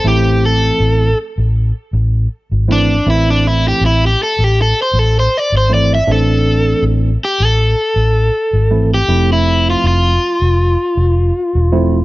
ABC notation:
X:1
M:4/4
L:1/16
Q:"Swing 16ths" 1/4=80
K:Am
V:1 name="Overdriven electric guitar"
G2 A4 z8 D2 | E D E G E G A G A c A c d c d e | A4 z2 G A8 G- | G E2 F F12 |]
V:2 name="Tine electric piano"
[E,A,CE]6 z8 [E,A,CE]2 | [E,A,CE]6 z8 [E,A,CE]2 | [E,A,CD]6 z8 [E,A,CE]2 | [F,A,CE]6 z8 [F,A,CE]2 |]
V:3 name="Fingered electric bass" clef=bass
A,,,4 A,,,2 z A,,,2 z A,,,2 z ^G,,,3 | A,,,4 A,,,2 z A,,,2 z A,,,2 z ^G,,,3 | A,,,4 A,,,2 z A,,,2 z A,,,2 z ^G,,,3 | F,,,4 F,,,2 z F,,,2 z F,,,2 z E,,,3 |]